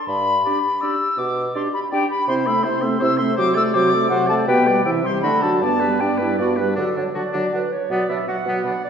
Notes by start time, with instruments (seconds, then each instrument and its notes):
0.07 bassoon G2, flute B5
0.45 french horn D4, clarinet G4, oboe D5, flute B5
0.81 french horn D4, clarinet G4, oboe D5, flute E6
1.18 bassoon B2, flute D6
1.55 french horn D4, clarinet G4, oboe D5, flute C6
1.74 flute B5
1.91 french horn D4, clarinet G4, oboe D5, flute G5
2.10 flute B5
2.28 bassoon C3, french horn C4, clarinet E4, oboe C5, flute C6
2.45 french horn A3, clarinet C4, oboe E5, flute B5
2.62 bassoon C3, french horn C4, clarinet E4, oboe C5, flute C6
2.82 french horn A3, clarinet C4, oboe E5
2.99 bassoon C3, french horn C4, clarinet E4, oboe C5, flute E6
3.18 french horn A3, clarinet C4, oboe E5, flute C6
3.37 bassoon C3, french horn F#3, clarinet F#4, oboe C5, flute D6
3.55 french horn A3, clarinet A4, oboe D5, flute E6
3.74 bassoon C3, french horn F#3, clarinet F#4, oboe C5, flute D6
3.90 clarinet A4, oboe D5
3.94 french horn A3
4.09 bassoon C3, french horn F#3, clarinet F#4, oboe C5, flute F#5
4.27 french horn A3, clarinet A4, oboe D5, flute A5
4.47 bassoon B2, french horn B3, clarinet G4, oboe B4, flute G5
4.67 french horn G3, clarinet B4, oboe D5
4.84 bassoon C3, french horn E3, clarinet E4, oboe E5, flute G5
5.04 french horn G3, clarinet G4, oboe C5, flute C6
5.22 bassoon D3, french horn A3, clarinet D4, oboe F#4, flute B5
5.41 french horn F#3, clarinet F#4, oboe A4, flute A5
5.60 bassoon G2, french horn B3, clarinet D4, oboe D5, flute A5
5.80 french horn G3, clarinet B3, oboe B4
6.00 bassoon G2, french horn B3, clarinet D4, oboe D5, flute G5
6.18 french horn G3, clarinet E4, oboe B4
6.38 bassoon G2, french horn B3, clarinet F#4, oboe D5
6.57 french horn G3, oboe B4, clarinet B4
6.76 bassoon D3, french horn F#3, oboe D4, clarinet A4, flute D5
6.95 bassoon D3, french horn F#3, oboe D4, clarinet C#5, flute F#5
7.15 bassoon D3, french horn F#3, oboe F#4, clarinet D5, flute A5
7.32 bassoon D3, french horn F#3, oboe D4, flute D5
7.52 bassoon D3, french horn F#3, oboe D4, clarinet B4, flute F#5
7.72 clarinet C#5
7.90 bassoon B2, french horn F#3, oboe B3, clarinet D5, flute F#5
8.09 bassoon B2, french horn F#3, oboe D4, clarinet E5, flute B5
8.27 bassoon B2, french horn F#3, oboe F#4, clarinet F#5, flute D6
8.46 bassoon B2, french horn F#3, oboe B3, flute F#5
8.64 bassoon B2, french horn F#3, oboe D4, flute B5
8.85 clarinet D5